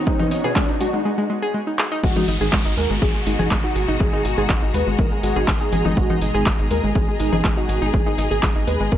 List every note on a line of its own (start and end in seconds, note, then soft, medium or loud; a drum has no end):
0.00 1.01 D#3 medium
0.00 1.01 B3 medium
0.00 1.05 B3 medium
0.00 1.01 F#4 medium
0.00 1.05 F#4 medium
0.00 1.05 C#5 medium
0.00 riser medium
0.07 0.11 G#3 medium
0.07 0.29 D#4 loud
0.07 kick loud
0.07 shaker medium
0.19 0.28 B2 medium
0.19 0.28 F#3 medium
0.19 0.28 B3 medium
0.19 0.27 D#4 loud
0.19 low conga medium
0.31 0.42 B1 loud
0.31 0.39 D#4 medium
0.31 open hi-hat loud
0.31 shaker medium
0.44 1.05 B2 loud
0.44 1.05 F#3 medium
0.44 1.05 B3 loud
0.44 0.55 G#4 loud
0.44 shaker medium
0.56 0.61 G#3 medium
0.56 kick loud
0.56 clap loud
0.56 shaker medium
0.69 0.78 B1 medium
0.69 0.76 D#4 medium
0.81 0.85 G#3 medium
0.81 0.95 F#4 medium
0.81 open hi-hat medium
0.81 shaker medium
0.93 1.03 B1 medium
0.93 1.04 G#3 medium
0.93 shaker medium
1.05 1.10 G#3 medium
1.18 1.25 G#3 medium
1.30 1.41 G#3 medium
1.42 1.53 G#4 loud
1.54 1.59 G#3 medium
1.67 1.74 D#4 medium
1.79 1.86 G#4 medium
1.79 clap medium
1.92 1.99 D#4 loud
2.03 2.14 G#1 loud
2.03 8.98 B2 medium
2.03 8.98 G#3 medium
2.03 2.08 G#3 medium
2.03 5.93 F#4 medium
2.03 2.25 F#4 loud
2.03 8.98 G#4 medium
2.03 kick loud
2.03 downlifter medium
2.03 shaker medium
2.16 2.25 G#2 medium
2.16 2.25 D#3 medium
2.16 2.25 G#3 loud
2.16 2.23 D#4 loud
2.16 8.98 D#5 medium
2.16 low conga medium
2.16 shaker medium
2.28 2.39 G#1 medium
2.28 2.36 D#4 medium
2.28 open hi-hat loud
2.36 8.98 A#5 medium
2.41 2.50 G#1 medium
2.41 2.49 G#2 medium
2.41 2.49 D#3 medium
2.41 2.49 G#3 medium
2.41 2.51 G#4 loud
2.41 shaker medium
2.53 2.63 G#1 loud
2.53 2.57 G#3 medium
2.53 kick loud
2.53 clap loud
2.53 shaker medium
2.65 2.75 G#1 medium
2.65 2.73 D#4 medium
2.65 shaker medium
2.77 2.88 D#2 medium
2.77 2.82 G#3 medium
2.77 2.92 A#4 medium
2.77 open hi-hat medium
2.90 3.00 G#1 medium
2.90 3.01 G#3 medium
2.90 shaker medium
3.02 3.12 G#1 loud
3.02 3.06 G#3 medium
3.02 3.17 G#4 medium
3.02 kick loud
3.02 shaker medium
3.15 3.22 G#3 medium
3.15 shaker medium
3.26 3.37 G#1 medium
3.26 3.38 G#3 medium
3.26 3.48 D#4 medium
3.26 open hi-hat loud
3.39 3.49 G#1 medium
3.39 3.50 G#4 loud
3.39 low conga medium
3.39 shaker medium
3.51 3.62 G#1 loud
3.51 3.56 G#3 medium
3.51 kick loud
3.51 clap loud
3.51 shaker medium
3.64 3.71 D#4 medium
3.64 3.85 F#4 medium
3.64 shaker medium
3.76 3.86 G#1 loud
3.76 3.83 G#4 medium
3.76 open hi-hat medium
3.88 3.98 G#1 medium
3.88 3.95 D#4 loud
3.88 shaker medium
4.00 4.11 G#1 loud
4.00 4.05 G#3 medium
4.00 4.22 G#4 loud
4.00 kick loud
4.00 shaker medium
4.13 4.21 G#2 medium
4.13 4.22 D#3 medium
4.13 4.22 G#3 medium
4.13 4.20 D#4 loud
4.13 shaker medium
4.25 4.35 G#1 medium
4.25 4.32 D#4 medium
4.25 open hi-hat loud
4.38 4.47 G#1 medium
4.38 5.34 G#2 loud
4.38 5.34 D#3 medium
4.38 5.34 G#3 loud
4.38 4.48 G#4 loud
4.38 shaker medium
4.49 4.60 G#1 loud
4.49 4.54 G#3 medium
4.49 kick loud
4.49 clap loud
4.49 shaker medium
4.62 4.72 G#1 medium
4.62 4.69 D#4 medium
4.62 shaker medium
4.74 4.84 D#2 medium
4.74 4.79 G#3 medium
4.74 4.89 B4 medium
4.74 open hi-hat loud
4.87 4.97 G#1 medium
4.87 4.97 G#3 medium
4.87 shaker medium
4.99 5.09 G#1 loud
4.99 5.03 G#3 medium
4.99 5.13 A#4 medium
4.99 kick loud
4.99 shaker medium
5.12 5.18 G#3 medium
5.12 shaker medium
5.23 5.34 G#1 loud
5.23 5.35 G#3 medium
5.23 5.45 F#4 loud
5.23 open hi-hat loud
5.36 5.46 G#1 medium
5.36 6.07 G#2 medium
5.36 6.07 D#3 medium
5.36 6.07 G#3 medium
5.36 5.47 G#4 loud
5.36 shaker medium
5.48 5.58 G#1 loud
5.48 5.52 G#3 medium
5.48 kick loud
5.48 clap loud
5.48 shaker medium
5.60 5.68 D#4 medium
5.60 5.82 G#4 loud
5.60 shaker medium
5.72 5.83 G#1 medium
5.72 5.80 G#4 medium
5.72 open hi-hat medium
5.72 low conga medium
5.85 5.95 G#1 medium
5.85 5.92 D#4 loud
5.85 low conga medium
5.85 shaker medium
5.97 6.07 G#1 loud
5.97 6.02 G#3 medium
5.97 6.19 F#4 loud
5.97 8.98 G#4 medium
5.97 kick loud
5.97 shaker medium
6.10 6.18 G#2 medium
6.10 6.18 D#3 medium
6.10 6.18 G#3 loud
6.10 6.17 D#4 loud
6.10 low conga medium
6.10 shaker medium
6.21 6.32 G#1 loud
6.21 6.29 D#4 medium
6.21 open hi-hat loud
6.34 6.44 G#1 medium
6.34 6.43 G#2 medium
6.34 6.43 D#3 medium
6.34 6.43 G#3 medium
6.34 6.45 G#4 loud
6.34 shaker medium
6.46 6.57 G#1 loud
6.46 6.51 G#3 medium
6.46 kick loud
6.46 clap loud
6.46 shaker medium
6.59 6.69 G#1 medium
6.59 6.66 D#4 medium
6.59 shaker medium
6.71 6.81 D#2 medium
6.71 6.75 G#3 medium
6.71 6.86 A#4 medium
6.71 open hi-hat loud
6.83 6.93 G#1 medium
6.83 6.94 G#3 medium
6.83 shaker medium
6.95 7.06 G#1 loud
6.95 7.00 G#3 medium
6.95 7.10 G#4 medium
6.95 kick loud
6.95 shaker medium
7.08 7.15 G#3 medium
7.08 shaker medium
7.20 7.30 G#1 loud
7.20 7.31 G#3 medium
7.20 7.42 D#4 medium
7.20 open hi-hat loud
7.33 7.42 G#1 medium
7.33 7.43 G#4 loud
7.33 low conga loud
7.33 shaker medium
7.44 7.55 G#1 loud
7.44 7.49 G#3 medium
7.44 kick loud
7.44 clap loud
7.44 shaker medium
7.57 7.64 D#4 medium
7.57 7.79 F#4 loud
7.57 shaker medium
7.69 7.79 G#1 medium
7.69 7.77 G#4 medium
7.69 open hi-hat loud
7.82 7.91 G#1 medium
7.82 7.89 D#4 loud
7.82 shaker medium
7.94 8.04 G#1 loud
7.94 7.98 G#3 medium
7.94 8.15 G#4 loud
7.94 kick loud
7.94 shaker medium
8.06 8.15 G#2 medium
8.06 8.15 D#3 medium
8.06 8.15 G#3 medium
8.06 8.13 D#4 loud
8.06 shaker medium
8.18 8.29 G#1 loud
8.18 8.26 D#4 medium
8.18 open hi-hat loud
8.31 8.41 G#1 medium
8.31 8.42 G#4 loud
8.31 shaker medium
8.43 8.53 G#1 loud
8.43 8.47 G#3 medium
8.43 kick loud
8.43 clap loud
8.43 shaker medium
8.56 8.65 G#1 medium
8.56 8.63 D#4 medium
8.56 shaker medium
8.67 8.78 D#2 medium
8.67 8.72 G#3 medium
8.67 8.82 B4 medium
8.67 open hi-hat loud
8.80 8.90 G#1 medium
8.80 8.91 G#3 medium
8.80 shaker medium
8.92 8.98 G#1 loud
8.92 8.97 G#3 medium
8.92 8.98 A#4 medium
8.92 kick loud
8.92 shaker medium